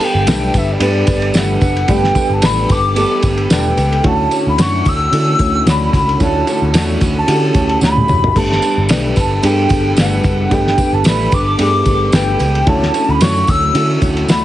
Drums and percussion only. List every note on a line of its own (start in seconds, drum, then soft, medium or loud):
0.00 ride medium
0.00 tambourine medium
0.27 snare loud
0.27 ride medium
0.27 tambourine loud
0.54 kick medium
0.54 ride medium
0.54 tambourine soft
0.80 ride medium
0.80 tambourine soft
1.07 kick loud
1.07 ride medium
1.07 tambourine soft
1.22 ride soft
1.34 snare loud
1.34 ride medium
1.34 tambourine medium
1.61 kick medium
1.61 ride medium
1.61 tambourine soft
1.77 ride soft
1.88 kick loud
1.88 ride medium
1.88 tambourine soft
2.04 snare soft
2.15 kick medium
2.15 ride medium
2.15 tambourine medium
2.42 snare loud
2.42 ride medium
2.42 tambourine loud
2.69 kick medium
2.69 ride medium
2.69 tambourine soft
2.96 ride medium
2.96 tambourine soft
3.22 kick medium
3.22 ride medium
3.22 tambourine soft
3.37 ride soft
3.50 snare loud
3.50 ride medium
3.50 tambourine medium
3.77 ride medium
3.77 tambourine soft
3.92 ride soft
4.04 kick loud
4.04 ride medium
4.31 ride medium
4.31 tambourine medium
4.58 snare loud
4.58 ride medium
4.58 tambourine loud
4.85 kick medium
4.85 ride medium
4.85 tambourine soft
5.13 ride loud
5.13 tambourine medium
5.39 kick loud
5.39 ride medium
5.39 tambourine soft
5.67 snare loud
5.67 ride medium
5.67 tambourine medium
5.93 kick medium
5.93 ride medium
5.93 tambourine soft
6.09 ride soft
6.20 kick loud
6.20 ride medium
6.20 tambourine soft
6.47 ride medium
6.47 tambourine soft
6.74 snare loud
6.74 ride medium
6.74 tambourine loud
7.01 kick loud
7.01 ride medium
7.01 tambourine soft
7.28 ride loud
7.28 tambourine medium
7.54 kick medium
7.54 ride medium
7.54 tambourine soft
7.69 ride soft
7.81 snare medium
7.81 tambourine medium
7.97 high tom medium
8.08 mid tom loud
8.08 tambourine soft
8.24 floor tom loud
8.36 kick loud
8.36 tambourine soft
8.36 crash medium
8.52 snare soft
8.62 ride medium
8.62 tambourine medium
8.89 snare loud
8.89 ride medium
8.89 tambourine loud
9.16 kick loud
9.16 ride medium
9.16 tambourine soft
9.43 ride medium
9.43 tambourine soft
9.69 kick loud
9.69 ride medium
9.69 tambourine soft
9.97 snare loud
9.97 ride medium
9.97 tambourine medium
10.24 kick medium
10.24 ride medium
10.24 tambourine soft
10.51 kick loud
10.51 ride medium
10.51 tambourine soft
10.67 snare soft
10.78 kick loud
10.78 ride medium
10.78 tambourine medium
11.04 snare loud
11.04 ride medium
11.04 tambourine medium
11.32 kick loud
11.32 ride medium
11.32 tambourine soft
11.59 ride loud
11.59 tambourine soft
11.85 kick medium
11.85 ride medium
11.85 tambourine soft
12.12 snare loud
12.12 ride medium
12.12 tambourine medium
12.39 ride medium
12.39 tambourine soft
12.55 ride soft
12.67 kick loud
12.67 ride medium
12.83 snare soft
12.94 ride medium
12.94 tambourine medium
13.21 snare loud
13.21 ride medium
13.21 tambourine loud
13.47 kick loud
13.47 ride medium
13.47 tambourine soft
13.75 ride loud
13.75 tambourine medium
14.01 kick medium
14.01 ride medium
14.01 tambourine soft
14.17 ride soft
14.28 snare loud
14.28 ride medium
14.28 tambourine medium